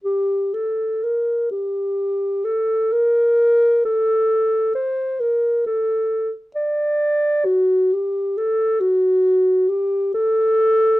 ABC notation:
X:1
M:4/4
L:1/8
Q:1/4=66
K:Gm
V:1 name="Clarinet"
G A B G2 A B2 | A2 c B A z d2 | ^F G A F2 G A2 |]